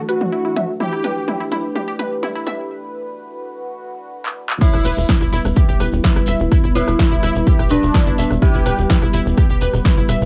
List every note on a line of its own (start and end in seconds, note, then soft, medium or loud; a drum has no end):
0.00 4.57 E3 medium
0.00 4.57 A3 medium
0.00 4.57 D4 medium
0.00 0.76 F#4 medium
0.00 0.76 D5 medium
0.09 0.71 F#4 loud
0.09 0.15 B4 medium
0.09 closed hi-hat loud
0.21 mid tom medium
0.33 0.36 E4 medium
0.45 0.49 E4 medium
0.56 0.60 E5 medium
0.56 closed hi-hat loud
0.56 mid tom medium
0.80 0.84 E4 medium
0.80 2.69 G4 medium
0.80 1.43 G4 loud
0.80 4.57 B4 medium
0.80 mid tom medium
0.93 0.96 E4 medium
1.04 1.10 B4 medium
1.04 closed hi-hat loud
1.04 mid tom medium
1.28 1.32 E4 medium
1.28 mid tom medium
1.40 1.44 E4 medium
1.52 1.58 E4 loud
1.52 closed hi-hat loud
1.52 mid tom medium
1.75 1.79 G4 medium
1.75 mid tom medium
1.88 1.94 G4 medium
1.99 2.06 B4 medium
1.99 closed hi-hat loud
1.99 mid tom medium
2.23 2.27 E4 medium
2.23 mid tom medium
2.35 2.39 E4 medium
2.47 2.51 E5 medium
2.47 closed hi-hat loud
2.47 mid tom loud
2.71 4.59 F#4 medium
4.26 clap medium
4.50 clap loud
4.61 10.25 G3 medium
4.61 10.25 B3 medium
4.61 8.38 E4 medium
4.61 5.23 E4 medium
4.61 4.65 E4 medium
4.61 5.23 E4 loud
4.61 10.25 B4 medium
4.61 kick loud
4.61 crash loud
4.61 shekere medium
4.73 4.81 E1 medium
4.73 4.77 E4 medium
4.73 cross-stick medium
4.73 shekere soft
4.85 4.93 E1 medium
4.85 4.91 B4 medium
4.85 closed hi-hat loud
4.85 shekere medium
4.97 5.05 E1 medium
4.97 shekere soft
5.09 5.13 E4 medium
5.09 kick loud
5.09 cross-stick medium
5.09 snare loud
5.09 shekere medium
5.21 5.29 E1 medium
5.21 5.25 E4 medium
5.21 shekere soft
5.33 5.41 E1 loud
5.33 5.39 E4 loud
5.33 closed hi-hat loud
5.33 shekere medium
5.45 5.52 E1 medium
5.45 cross-stick medium
5.45 shekere soft
5.56 5.60 G4 medium
5.56 kick loud
5.56 shekere soft
5.68 5.76 E1 medium
5.68 5.75 G4 medium
5.68 shekere soft
5.80 5.88 E1 loud
5.80 5.87 B4 medium
5.80 cross-stick medium
5.80 closed hi-hat loud
5.80 shekere medium
5.92 6.00 E1 medium
5.92 shekere soft
6.04 6.08 E4 medium
6.04 kick loud
6.04 snare loud
6.04 shekere medium
6.16 6.24 F#1 medium
6.16 6.20 E4 medium
6.16 cross-stick medium
6.16 shekere soft
6.26 6.36 E1 loud
6.26 6.32 E5 medium
6.26 closed hi-hat loud
6.26 shekere medium
6.40 6.47 E1 medium
6.40 shekere soft
6.52 6.56 E4 medium
6.52 kick loud
6.52 cross-stick medium
6.52 shekere medium
6.64 6.71 E1 medium
6.64 6.68 E4 medium
6.64 shekere soft
6.75 6.83 E1 medium
6.75 7.62 E4 loud
6.75 7.62 E4 medium
6.75 6.82 B4 medium
6.75 closed hi-hat loud
6.75 shekere loud
6.87 6.95 E1 loud
6.87 cross-stick medium
6.87 shekere soft
6.99 7.03 E4 medium
6.99 kick loud
6.99 snare loud
6.99 shekere medium
7.12 7.19 E1 medium
7.12 7.15 E4 medium
7.12 shekere soft
7.23 7.31 E1 loud
7.23 7.30 E4 loud
7.23 cross-stick medium
7.23 closed hi-hat loud
7.23 shekere medium
7.35 7.43 E1 medium
7.35 shekere soft
7.47 7.51 G4 medium
7.47 kick loud
7.47 shekere medium
7.59 7.67 E1 medium
7.59 7.65 G4 medium
7.59 cross-stick medium
7.59 shekere soft
7.69 7.79 E1 loud
7.69 8.33 D4 loud
7.69 8.33 D4 medium
7.69 7.77 B4 medium
7.69 closed hi-hat loud
7.69 shekere medium
7.83 7.90 E1 medium
7.83 shekere soft
7.94 7.98 E4 medium
7.94 kick loud
7.94 cross-stick medium
7.94 snare loud
7.94 shekere soft
8.06 8.14 F#1 medium
8.06 8.11 E4 medium
8.06 shekere soft
8.18 8.26 E1 loud
8.18 8.22 E5 medium
8.18 closed hi-hat loud
8.18 shekere medium
8.31 8.38 E1 medium
8.31 cross-stick medium
8.31 shekere soft
8.42 8.46 E4 medium
8.42 9.04 G4 loud
8.42 10.25 F#5 medium
8.42 kick loud
8.42 shekere medium
8.54 8.62 E1 medium
8.54 8.58 E4 medium
8.54 shekere soft
8.66 8.74 E1 loud
8.66 8.73 B4 medium
8.66 cross-stick medium
8.66 closed hi-hat loud
8.66 shekere medium
8.78 8.86 E1 medium
8.78 shekere soft
8.90 8.94 E4 medium
8.90 kick loud
8.90 snare loud
8.90 shekere medium
9.02 9.09 E1 medium
9.02 9.06 E4 medium
9.02 cross-stick medium
9.02 shekere soft
9.13 9.21 E1 loud
9.13 9.20 E4 loud
9.13 closed hi-hat loud
9.13 shekere medium
9.26 9.33 E1 medium
9.26 shekere soft
9.37 9.41 G4 medium
9.37 kick loud
9.37 cross-stick medium
9.37 shekere medium
9.49 9.57 E1 medium
9.49 9.56 G4 medium
9.49 shekere soft
9.61 9.69 E1 loud
9.61 9.68 B4 medium
9.61 closed hi-hat loud
9.61 shekere medium
9.73 9.81 E1 medium
9.73 cross-stick soft
9.73 shekere soft
9.85 9.89 E4 medium
9.85 kick loud
9.85 snare loud
9.85 shekere medium
9.97 10.05 F#1 medium
9.97 10.01 E4 medium
9.97 shekere soft
10.09 10.17 E1 loud
10.09 10.13 E5 medium
10.09 cross-stick medium
10.09 closed hi-hat loud
10.09 shekere loud
10.21 10.25 E1 medium
10.21 shekere soft